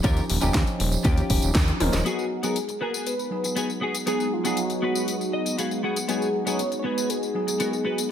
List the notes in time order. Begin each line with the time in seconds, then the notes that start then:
0.03 D#2 F3 C#4 D#4 F4 G4 A#4, kick, closed hi-hat, tambourine
0.16 closed hi-hat, tambourine
0.30 D#1, open hi-hat
0.41 D#1 F3 C#4 D#4 F4 G4, closed hi-hat, tambourine
0.53 D#2, kick, snare, closed hi-hat, tambourine
0.67 closed hi-hat, tambourine
0.79 D#1, muted clean electric guitar stroke, open hi-hat
0.92 closed hi-hat, tambourine
1.04 D#2 C#4 F4 G4, kick, closed hi-hat, tambourine
1.18 closed hi-hat, tambourine
1.29 D#1 F3 C#4 D#4 G4, kick, open hi-hat
1.42 D#1, closed hi-hat, tambourine
1.55 D#2, kick, snare, closed hi-hat, tambourine
1.68 closed hi-hat, tambourine
1.80 D#1 F3 C#4 D#4 A#4, open hi-hat, high tom
1.93 D#1, muted clean electric guitar stroke, snare, closed hi-hat, tambourine
2.05 F#3 G#3 B3 D#4 F#4 G#4, closed hi-hat, tambourine
2.19 tambourine
2.43 F#3 B3 D#4 F#4 G#4 A#4, closed hi-hat, tambourine
2.56 closed hi-hat, tambourine
2.68 muted clean electric guitar stroke, closed hi-hat, tambourine
2.81 B3 F#4 G#4 A#4
2.94 tambourine
3.07 B4, closed hi-hat, tambourine
3.19 tambourine
3.30 F#3 B3 D#4 G#4
3.44 muted clean electric guitar stroke, closed hi-hat, tambourine
3.56 B3 F#4 G#4, closed hi-hat, tambourine
3.70 tambourine
3.81 B3 F#4 G#4
3.95 closed hi-hat, tambourine
4.06 F#3 B3 D#4 F#4 G#4, closed hi-hat, tambourine
4.20 tambourine
4.33 F4
4.44 F#3 B3 D#4 F#4 G#4, closed hi-hat, tambourine
4.57 F#4, closed hi-hat, tambourine
4.70 muted clean electric guitar stroke, closed hi-hat, tambourine
4.82 B3 F#4 B4
4.95 tambourine
5.08 closed hi-hat, tambourine
5.21 tambourine
5.33 D#5
5.45 muted clean electric guitar stroke, closed hi-hat, tambourine
5.58 B3 F#4 G#4 F5, closed hi-hat, tambourine
5.71 tambourine
5.83 B3 F#4 G#4 F#5
5.96 closed hi-hat, tambourine
6.08 F#3 B3 D#4 F#4 G#4, closed hi-hat, tambourine
6.22 tambourine
6.46 F#3 B3 D#4 F#4 G#4 C#5, closed hi-hat, tambourine
6.59 closed hi-hat, tambourine
6.72 muted clean electric guitar stroke, closed hi-hat, tambourine
6.79 C#5
6.84 B3 F#4 G#4 B4
6.98 tambourine
7.10 G#4, closed hi-hat, tambourine
7.23 tambourine
7.34 F#3 B3 D#4 G#4
7.47 muted clean electric guitar stroke, closed hi-hat, tambourine
7.60 B3 F#4 A#4, closed hi-hat, tambourine
7.73 tambourine
7.85 B3 F#4 B4
7.98 closed hi-hat, tambourine